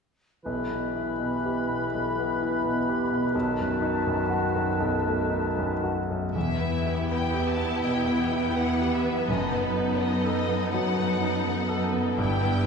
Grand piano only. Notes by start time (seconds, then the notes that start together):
0.46 B1
0.70 B2
0.95 E4
1.20 B2
1.46 G4
1.68 B2
1.95 B1
2.19 B3
2.42 E4
2.65 B2
2.89 G4
3.12 B2
3.35 B1
3.60 F#2
3.82 D#4
4.07 F#2
4.30 F#4
4.56 F#2
4.80 B1
5.06 A3
5.30 D#4
5.58 F#2
5.83 F#4
6.10 F#2
6.35 E2
6.61 B3
6.86 E4
7.11 B3
7.34 G4
7.58 B3
7.84 B2
8.07 B3
8.31 E4
8.56 B3
8.81 G4
9.05 B3
9.29 F#2
9.52 B3
9.76 D#4
10.01 B3
10.25 A4
10.49 B3
10.74 F#3
10.98 B3
11.21 D#4
11.48 B3
11.69 A4
11.93 B3
12.18 G2
12.42 B3